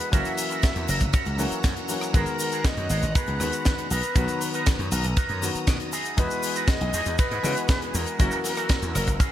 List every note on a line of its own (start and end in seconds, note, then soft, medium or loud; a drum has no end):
0.00 0.10 F#4 medium
0.00 0.11 G#4 medium
0.00 0.12 B4 loud
0.00 0.10 D#5 medium
0.00 3.87 F#5 medium
0.00 0.11 D#6 medium
0.00 closed hi-hat medium
0.00 shaker soft
0.12 0.22 F#1 loud
0.12 1.35 E3 loud
0.12 1.36 F#3 medium
0.12 1.36 A#3 medium
0.12 0.32 C#4 loud
0.12 1.36 C#4 medium
0.12 0.32 E4 medium
0.12 0.32 F#4 loud
0.12 1.36 F#4 loud
0.12 0.32 A#4 loud
0.12 1.09 E5 loud
0.12 3.87 A#5 medium
0.12 2.12 E6 medium
0.12 kick loud
0.12 closed hi-hat medium
0.12 ride medium
0.12 shaker medium
0.25 closed hi-hat medium
0.25 shaker soft
0.37 open hi-hat loud
0.37 shaker medium
0.37 shaker loud
0.50 0.63 C#4 medium
0.50 0.63 E4 medium
0.50 0.63 F#4 medium
0.50 0.63 A#4 loud
0.50 closed hi-hat medium
0.50 shaker soft
0.63 kick loud
0.63 snare loud
0.63 closed hi-hat medium
0.63 ride medium
0.63 shaker medium
0.75 0.86 E2 medium
0.75 muted clean electric guitar stroke soft
0.75 closed hi-hat medium
0.75 shaker soft
0.88 0.98 F#1 loud
0.88 1.01 C#4 medium
0.88 1.01 E4 medium
0.88 1.01 F#4 medium
0.88 1.01 A#4 loud
0.88 open hi-hat loud
0.88 shaker medium
1.00 1.11 F#1 medium
1.00 kick medium
1.00 closed hi-hat medium
1.00 shaker soft
1.00 shaker medium
1.13 1.51 C#4 medium
1.13 1.51 E4 medium
1.13 1.52 F#4 medium
1.13 1.52 C#5 loud
1.13 kick loud
1.13 closed hi-hat medium
1.13 ride medium
1.13 shaker medium
1.25 1.45 C#2 loud
1.25 closed hi-hat medium
1.25 shaker soft
1.38 1.86 E3 medium
1.38 1.86 F#3 medium
1.38 1.86 A#3 medium
1.38 1.86 C#4 medium
1.38 1.86 F#4 loud
1.38 open hi-hat loud
1.38 shaker medium
1.51 muted slap bass stroke soft
1.51 closed hi-hat medium
1.51 shaker soft
1.51 shaker medium
1.63 1.74 F#2 loud
1.63 kick loud
1.63 snare loud
1.63 closed hi-hat medium
1.63 ride medium
1.63 shaker medium
1.77 closed hi-hat medium
1.77 shaker soft
1.88 2.11 E3 medium
1.88 2.11 F#3 medium
1.88 2.11 A#3 medium
1.88 2.11 C#4 medium
1.88 2.12 F#4 medium
1.88 muted clean electric guitar stroke soft
1.88 open hi-hat loud
1.88 shaker loud
1.88 shaker medium
2.01 cross-stick medium
2.01 closed hi-hat soft
2.01 shaker soft
2.03 shaker soft
2.13 2.24 G#1 loud
2.13 3.37 D#3 loud
2.13 3.37 G#3 medium
2.13 2.33 B3 loud
2.13 3.38 B3 medium
2.13 2.33 F#4 medium
2.13 3.38 F#4 loud
2.13 2.34 G#4 loud
2.13 3.37 A#4 medium
2.13 2.67 A#4 loud
2.13 2.34 A#4 loud
2.13 kick loud
2.13 closed hi-hat medium
2.13 ride medium
2.13 shaker medium
2.26 closed hi-hat soft
2.26 shaker soft
2.39 open hi-hat loud
2.39 shaker medium
2.52 2.65 B3 medium
2.52 2.65 F#4 medium
2.52 2.65 G#4 medium
2.52 2.65 A#4 loud
2.52 closed hi-hat medium
2.52 shaker soft
2.64 3.17 D#5 loud
2.64 kick loud
2.64 snare loud
2.64 closed hi-hat medium
2.64 ride medium
2.64 shaker medium
2.77 2.87 F#2 medium
2.77 muted clean electric guitar stroke soft
2.77 closed hi-hat medium
2.77 shaker soft
2.89 3.00 G#1 loud
2.89 3.03 B3 loud
2.89 3.03 F#4 medium
2.89 3.03 G#4 medium
2.89 3.03 A#4 medium
2.89 open hi-hat loud
2.89 shaker medium
2.89 shaker loud
3.02 3.12 G#1 medium
3.02 closed hi-hat medium
3.02 shaker medium
3.02 shaker soft
3.14 3.53 B3 medium
3.14 3.53 F#4 medium
3.14 3.53 G#4 medium
3.14 3.53 A#4 loud
3.14 3.91 B4 loud
3.14 kick loud
3.14 closed hi-hat medium
3.14 ride medium
3.14 shaker medium
3.27 3.37 C#2 medium
3.27 closed hi-hat medium
3.27 shaker soft
3.40 3.50 D#2 loud
3.40 3.89 D#3 medium
3.40 3.89 G#3 medium
3.40 3.89 B3 medium
3.40 3.90 F#4 medium
3.40 3.89 B4 medium
3.40 cross-stick medium
3.40 open hi-hat loud
3.40 shaker medium
3.52 closed hi-hat medium
3.52 shaker medium
3.52 shaker soft
3.65 kick loud
3.65 snare loud
3.65 closed hi-hat medium
3.65 ride medium
3.65 shaker medium
3.65 shaker soft
3.78 closed hi-hat medium
3.78 shaker soft
3.90 4.00 B1 medium
3.90 4.41 B3 medium
3.90 4.41 D#4 medium
3.90 4.41 F#4 medium
3.90 4.42 A#4 medium
3.90 4.88 B4 loud
3.90 5.91 A#5 medium
3.90 8.15 D#6 medium
3.90 open hi-hat loud
3.90 shaker medium
3.90 shaker loud
4.03 closed hi-hat medium
4.03 shaker medium
4.03 shaker soft
4.15 4.26 B1 loud
4.15 5.39 D#3 medium
4.15 5.39 F#3 medium
4.15 5.40 B3 medium
4.15 5.40 F#4 loud
4.15 5.39 B4 medium
4.15 kick loud
4.15 closed hi-hat medium
4.15 ride medium
4.15 shaker medium
4.28 closed hi-hat medium
4.28 shaker medium
4.28 shaker soft
4.41 open hi-hat loud
4.41 shaker medium
4.54 4.67 B3 medium
4.54 4.67 D#4 medium
4.54 4.67 F#4 medium
4.54 4.67 A#4 loud
4.54 closed hi-hat medium
4.54 shaker medium
4.54 shaker soft
4.66 kick loud
4.66 snare loud
4.66 closed hi-hat medium
4.66 ride medium
4.66 shaker medium
4.79 4.89 F#2 medium
4.79 muted clean electric guitar stroke soft
4.79 closed hi-hat medium
4.79 shaker soft
4.91 5.01 B1 loud
4.91 5.04 B3 medium
4.91 5.04 D#4 medium
4.91 5.04 F#4 medium
4.91 5.05 A#4 loud
4.91 open hi-hat loud
4.91 shaker medium
5.04 5.14 B1 loud
5.04 closed hi-hat medium
5.04 shaker soft
5.16 5.55 B3 medium
5.16 5.55 D#4 medium
5.16 5.55 F#4 medium
5.16 5.55 A#4 loud
5.16 kick loud
5.16 closed hi-hat medium
5.16 ride medium
5.16 shaker soft
5.16 shaker medium
5.29 5.49 F#2 loud
5.29 closed hi-hat medium
5.29 shaker soft
5.42 5.91 D#3 medium
5.42 5.91 F#3 medium
5.42 5.91 B3 medium
5.42 5.91 F#4 medium
5.42 5.91 A#4 medium
5.42 open hi-hat loud
5.42 shaker medium
5.42 shaker loud
5.55 muted slap bass stroke soft
5.55 closed hi-hat medium
5.55 shaker medium
5.55 shaker soft
5.67 5.77 B2 loud
5.67 kick loud
5.67 snare loud
5.67 closed hi-hat medium
5.67 ride medium
5.67 shaker medium
5.80 closed hi-hat medium
5.80 shaker soft
5.92 6.43 D#4 medium
5.92 6.43 E4 medium
5.92 6.43 F#4 medium
5.92 8.17 G#4 medium
5.92 6.43 G#4 loud
5.92 9.32 F#5 medium
5.92 open hi-hat loud
5.92 shaker medium
6.05 closed hi-hat soft
6.05 shaker medium
6.05 shaker soft
6.17 6.28 E2 loud
6.17 7.40 E3 loud
6.17 7.41 G#3 medium
6.17 7.41 B3 medium
6.17 7.41 F#4 loud
6.17 6.70 B4 loud
6.17 7.41 D#5 medium
6.17 kick loud
6.17 closed hi-hat medium
6.17 ride medium
6.17 shaker medium
6.31 closed hi-hat medium
6.31 shaker soft
6.43 open hi-hat loud
6.43 shaker loud
6.55 6.68 D#4 medium
6.55 6.68 E4 medium
6.55 6.68 F#4 medium
6.55 6.68 A#4 loud
6.55 closed hi-hat medium
6.55 shaker medium
6.55 shaker soft
6.68 7.20 D#5 loud
6.68 kick loud
6.68 snare loud
6.68 closed hi-hat medium
6.68 ride medium
6.68 shaker medium
6.81 6.91 B1 medium
6.81 muted clean electric guitar stroke soft
6.81 closed hi-hat medium
6.81 shaker soft
6.93 7.03 E2 loud
6.93 7.06 D#4 medium
6.93 7.06 E4 medium
6.93 7.06 F#4 medium
6.93 7.06 G#4 loud
6.93 open hi-hat loud
6.93 shaker loud
6.93 shaker medium
7.06 7.16 E2 loud
7.06 closed hi-hat medium
7.06 shaker medium
7.06 shaker soft
7.18 7.56 D#4 medium
7.18 7.57 E4 medium
7.18 7.57 F#4 medium
7.18 7.96 B4 loud
7.18 7.57 B4 loud
7.18 kick loud
7.18 closed hi-hat medium
7.18 ride medium
7.18 shaker medium
7.18 shaker soft
7.31 7.41 G#2 medium
7.31 closed hi-hat medium
7.31 shaker soft
7.43 7.54 C#3 loud
7.43 8.16 E3 medium
7.43 8.16 G#3 medium
7.43 8.17 B3 medium
7.43 8.17 F#4 medium
7.43 8.17 D#5 medium
7.43 cross-stick medium
7.43 open hi-hat loud
7.43 shaker medium
7.57 closed hi-hat medium
7.57 shaker soft
7.57 shaker medium
7.68 kick loud
7.68 snare loud
7.68 closed hi-hat medium
7.68 ride medium
7.68 shaker medium
7.82 closed hi-hat medium
7.82 shaker soft
7.94 8.04 E2 medium
7.94 9.32 A#4 loud
7.94 muted clean electric guitar stroke soft
7.94 open hi-hat loud
7.94 shaker medium
8.07 closed hi-hat medium
8.07 shaker soft
8.19 8.29 F#1 loud
8.19 9.32 E3 loud
8.19 9.32 F#3 medium
8.19 9.32 A#3 medium
8.19 8.38 C#4 loud
8.19 9.32 C#4 medium
8.19 8.38 E4 medium
8.19 8.39 F#4 loud
8.19 9.32 F#4 loud
8.19 9.32 A#4 medium
8.19 8.39 A#4 loud
8.19 9.32 E6 medium
8.19 kick loud
8.19 closed hi-hat medium
8.19 ride medium
8.19 shaker medium
8.19 shaker soft
8.31 closed hi-hat medium
8.31 shaker soft
8.44 snare soft
8.44 open hi-hat loud
8.44 shaker medium
8.57 8.70 C#4 medium
8.57 8.70 E4 medium
8.57 8.70 F#4 medium
8.57 8.70 A#4 loud
8.57 cross-stick medium
8.57 closed hi-hat medium
8.57 shaker soft
8.69 kick loud
8.69 snare loud
8.69 closed hi-hat medium
8.69 ride medium
8.69 shaker medium
8.82 8.92 E2 medium
8.82 muted clean electric guitar stroke soft
8.82 closed hi-hat medium
8.82 shaker soft
8.82 shaker medium
8.94 9.05 F#1 loud
8.94 9.08 C#4 loud
8.94 9.08 E4 medium
8.94 9.08 F#4 medium
8.94 9.08 A#4 medium
8.94 cross-stick medium
8.94 open hi-hat loud
8.94 shaker medium
9.07 9.17 F#1 medium
9.07 kick medium
9.07 closed hi-hat medium
9.07 shaker soft
9.19 9.32 C#4 medium
9.19 9.32 E4 medium
9.19 9.32 F#4 medium
9.19 9.32 G#4 loud
9.19 kick loud
9.19 closed hi-hat medium
9.19 ride medium
9.19 shaker medium
9.19 shaker soft